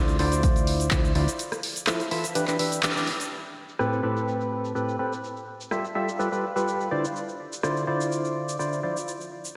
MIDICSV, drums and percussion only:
0, 0, Header, 1, 2, 480
1, 0, Start_track
1, 0, Tempo, 480000
1, 1393, Time_signature, 4, 2, 24, 8
1, 9561, End_track
2, 0, Start_track
2, 0, Title_t, "Drums"
2, 79, Note_on_c, 9, 42, 37
2, 87, Note_on_c, 9, 82, 34
2, 179, Note_off_c, 9, 42, 0
2, 187, Note_off_c, 9, 82, 0
2, 192, Note_on_c, 9, 46, 88
2, 292, Note_off_c, 9, 46, 0
2, 318, Note_on_c, 9, 42, 55
2, 326, Note_on_c, 9, 82, 69
2, 418, Note_off_c, 9, 42, 0
2, 426, Note_off_c, 9, 82, 0
2, 432, Note_on_c, 9, 42, 78
2, 433, Note_on_c, 9, 36, 119
2, 440, Note_on_c, 9, 82, 58
2, 532, Note_off_c, 9, 42, 0
2, 533, Note_off_c, 9, 36, 0
2, 540, Note_off_c, 9, 82, 0
2, 559, Note_on_c, 9, 42, 37
2, 566, Note_on_c, 9, 82, 36
2, 659, Note_off_c, 9, 42, 0
2, 666, Note_off_c, 9, 82, 0
2, 672, Note_on_c, 9, 46, 100
2, 772, Note_off_c, 9, 46, 0
2, 799, Note_on_c, 9, 42, 55
2, 807, Note_on_c, 9, 82, 72
2, 899, Note_off_c, 9, 42, 0
2, 907, Note_off_c, 9, 82, 0
2, 909, Note_on_c, 9, 39, 117
2, 912, Note_on_c, 9, 42, 84
2, 913, Note_on_c, 9, 36, 112
2, 920, Note_on_c, 9, 82, 59
2, 1009, Note_off_c, 9, 39, 0
2, 1012, Note_off_c, 9, 42, 0
2, 1013, Note_off_c, 9, 36, 0
2, 1020, Note_off_c, 9, 82, 0
2, 1047, Note_on_c, 9, 82, 34
2, 1147, Note_off_c, 9, 82, 0
2, 1153, Note_on_c, 9, 46, 87
2, 1253, Note_off_c, 9, 46, 0
2, 1280, Note_on_c, 9, 42, 51
2, 1288, Note_on_c, 9, 82, 72
2, 1380, Note_off_c, 9, 42, 0
2, 1388, Note_off_c, 9, 82, 0
2, 1392, Note_on_c, 9, 42, 82
2, 1400, Note_on_c, 9, 82, 56
2, 1493, Note_off_c, 9, 42, 0
2, 1500, Note_off_c, 9, 82, 0
2, 1520, Note_on_c, 9, 37, 58
2, 1520, Note_on_c, 9, 42, 37
2, 1527, Note_on_c, 9, 82, 35
2, 1620, Note_off_c, 9, 37, 0
2, 1620, Note_off_c, 9, 42, 0
2, 1627, Note_off_c, 9, 82, 0
2, 1632, Note_on_c, 9, 46, 102
2, 1733, Note_off_c, 9, 46, 0
2, 1760, Note_on_c, 9, 42, 56
2, 1767, Note_on_c, 9, 82, 72
2, 1860, Note_off_c, 9, 42, 0
2, 1867, Note_off_c, 9, 82, 0
2, 1870, Note_on_c, 9, 39, 122
2, 1873, Note_on_c, 9, 37, 65
2, 1873, Note_on_c, 9, 42, 84
2, 1881, Note_on_c, 9, 82, 58
2, 1970, Note_off_c, 9, 39, 0
2, 1973, Note_off_c, 9, 37, 0
2, 1973, Note_off_c, 9, 42, 0
2, 1981, Note_off_c, 9, 82, 0
2, 2000, Note_on_c, 9, 42, 39
2, 2007, Note_on_c, 9, 82, 34
2, 2100, Note_off_c, 9, 42, 0
2, 2107, Note_off_c, 9, 82, 0
2, 2113, Note_on_c, 9, 46, 88
2, 2213, Note_off_c, 9, 46, 0
2, 2240, Note_on_c, 9, 42, 56
2, 2247, Note_on_c, 9, 82, 69
2, 2340, Note_off_c, 9, 42, 0
2, 2347, Note_off_c, 9, 82, 0
2, 2353, Note_on_c, 9, 42, 86
2, 2360, Note_on_c, 9, 82, 57
2, 2453, Note_off_c, 9, 42, 0
2, 2460, Note_off_c, 9, 82, 0
2, 2476, Note_on_c, 9, 39, 37
2, 2480, Note_on_c, 9, 42, 39
2, 2487, Note_on_c, 9, 82, 35
2, 2576, Note_off_c, 9, 39, 0
2, 2580, Note_off_c, 9, 42, 0
2, 2587, Note_off_c, 9, 82, 0
2, 2593, Note_on_c, 9, 46, 106
2, 2693, Note_off_c, 9, 46, 0
2, 2720, Note_on_c, 9, 42, 58
2, 2728, Note_on_c, 9, 82, 71
2, 2820, Note_off_c, 9, 42, 0
2, 2828, Note_off_c, 9, 82, 0
2, 2829, Note_on_c, 9, 39, 127
2, 2833, Note_on_c, 9, 42, 85
2, 2840, Note_on_c, 9, 82, 58
2, 2929, Note_off_c, 9, 39, 0
2, 2933, Note_off_c, 9, 42, 0
2, 2940, Note_off_c, 9, 82, 0
2, 2968, Note_on_c, 9, 82, 35
2, 3068, Note_off_c, 9, 82, 0
2, 3073, Note_on_c, 9, 46, 87
2, 3173, Note_off_c, 9, 46, 0
2, 3200, Note_on_c, 9, 42, 53
2, 3208, Note_on_c, 9, 82, 67
2, 3300, Note_off_c, 9, 42, 0
2, 3308, Note_off_c, 9, 82, 0
2, 3321, Note_on_c, 9, 82, 51
2, 3421, Note_off_c, 9, 82, 0
2, 3448, Note_on_c, 9, 82, 30
2, 3548, Note_off_c, 9, 82, 0
2, 3687, Note_on_c, 9, 82, 64
2, 3787, Note_off_c, 9, 82, 0
2, 3793, Note_on_c, 9, 37, 59
2, 3801, Note_on_c, 9, 82, 52
2, 3893, Note_off_c, 9, 37, 0
2, 3901, Note_off_c, 9, 82, 0
2, 3927, Note_on_c, 9, 82, 30
2, 4027, Note_off_c, 9, 82, 0
2, 4168, Note_on_c, 9, 82, 65
2, 4268, Note_off_c, 9, 82, 0
2, 4281, Note_on_c, 9, 82, 53
2, 4381, Note_off_c, 9, 82, 0
2, 4408, Note_on_c, 9, 82, 31
2, 4507, Note_off_c, 9, 82, 0
2, 4648, Note_on_c, 9, 82, 64
2, 4748, Note_off_c, 9, 82, 0
2, 4760, Note_on_c, 9, 82, 53
2, 4860, Note_off_c, 9, 82, 0
2, 4887, Note_on_c, 9, 82, 32
2, 4987, Note_off_c, 9, 82, 0
2, 5127, Note_on_c, 9, 82, 59
2, 5227, Note_off_c, 9, 82, 0
2, 5240, Note_on_c, 9, 82, 50
2, 5340, Note_off_c, 9, 82, 0
2, 5367, Note_on_c, 9, 82, 29
2, 5467, Note_off_c, 9, 82, 0
2, 5607, Note_on_c, 9, 82, 63
2, 5707, Note_off_c, 9, 82, 0
2, 5712, Note_on_c, 9, 37, 62
2, 5720, Note_on_c, 9, 82, 52
2, 5812, Note_off_c, 9, 37, 0
2, 5820, Note_off_c, 9, 82, 0
2, 5847, Note_on_c, 9, 82, 29
2, 5947, Note_off_c, 9, 82, 0
2, 6087, Note_on_c, 9, 82, 61
2, 6187, Note_off_c, 9, 82, 0
2, 6200, Note_on_c, 9, 82, 50
2, 6300, Note_off_c, 9, 82, 0
2, 6327, Note_on_c, 9, 82, 30
2, 6427, Note_off_c, 9, 82, 0
2, 6567, Note_on_c, 9, 82, 62
2, 6667, Note_off_c, 9, 82, 0
2, 6681, Note_on_c, 9, 82, 52
2, 6781, Note_off_c, 9, 82, 0
2, 6807, Note_on_c, 9, 82, 29
2, 6907, Note_off_c, 9, 82, 0
2, 7047, Note_on_c, 9, 82, 60
2, 7147, Note_off_c, 9, 82, 0
2, 7160, Note_on_c, 9, 82, 49
2, 7260, Note_off_c, 9, 82, 0
2, 7287, Note_on_c, 9, 82, 30
2, 7387, Note_off_c, 9, 82, 0
2, 7527, Note_on_c, 9, 82, 64
2, 7627, Note_off_c, 9, 82, 0
2, 7633, Note_on_c, 9, 37, 63
2, 7641, Note_on_c, 9, 82, 51
2, 7733, Note_off_c, 9, 37, 0
2, 7741, Note_off_c, 9, 82, 0
2, 7767, Note_on_c, 9, 82, 30
2, 7867, Note_off_c, 9, 82, 0
2, 8008, Note_on_c, 9, 82, 60
2, 8108, Note_off_c, 9, 82, 0
2, 8121, Note_on_c, 9, 82, 50
2, 8221, Note_off_c, 9, 82, 0
2, 8248, Note_on_c, 9, 82, 29
2, 8348, Note_off_c, 9, 82, 0
2, 8488, Note_on_c, 9, 82, 63
2, 8588, Note_off_c, 9, 82, 0
2, 8601, Note_on_c, 9, 82, 51
2, 8701, Note_off_c, 9, 82, 0
2, 8728, Note_on_c, 9, 82, 29
2, 8828, Note_off_c, 9, 82, 0
2, 8968, Note_on_c, 9, 82, 60
2, 9068, Note_off_c, 9, 82, 0
2, 9081, Note_on_c, 9, 82, 50
2, 9181, Note_off_c, 9, 82, 0
2, 9208, Note_on_c, 9, 82, 29
2, 9308, Note_off_c, 9, 82, 0
2, 9447, Note_on_c, 9, 82, 62
2, 9547, Note_off_c, 9, 82, 0
2, 9561, End_track
0, 0, End_of_file